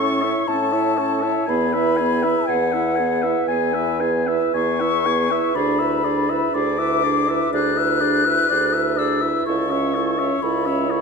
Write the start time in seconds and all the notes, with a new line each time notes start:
Already playing: A2 C#5 C#6
0.00 C#4 A4
0.21 E4 C#5 E5
0.46 A2 C#4 A4 C#5 A5
0.72 E4 C#5 E5
0.97 C#4 A4 C#5
1.21 E4 C#5 E5
1.46 E2 G#4 G#5 B5
1.50 B3
1.73 E4 B4 E5
1.96 G#4 G#5
2.01 B3
2.23 E4 B4 E5
2.47 E2 G#4 F#5 G#5
2.51 B3
2.72 E4 B4 E5
2.96 G#4 G#5
3.00 B3
3.22 E4 B4 E5
3.47 E2 B3 G#4 G#5
3.74 E4 B4 E5
4.00 B3 G#4 G#5
4.27 E4 B4 E5
4.54 E2 B3 G#4 G#5 C#6
4.80 E4 B4 E5
5.06 B3 G#4 G#5
5.31 E4 B4 E5
5.55 D2 D4 G#4 D5 B5
5.79 E4 B4 E5
6.04 D4 G#4 D5
6.29 E4 B4 E5
6.52 D2 D4 G#4 D5 D6
6.79 E4 B4 E5
7.03 D4 G#4 D5
7.28 E4 B4 E5
7.51 D2 D4 G#4 D5 F#6
7.76 E4 B4 E5
8.01 D4 G#4 D5
8.25 E4 B4 E5
8.49 D2 D4 G#4 D5
8.74 E4 B4 E5
8.97 D4 G#4 D5 E6
9.22 E4 B4 E5
9.46 C#2 E4 A4 C#5 C#6
9.70 C#4 C#5 E5
9.94 E4 A4 C#5
10.19 C#4 C#5 E5
10.41 C#2 E4 A4 C#5 B5
10.65 C#4 C#5 E5
10.89 E4 A4 C#5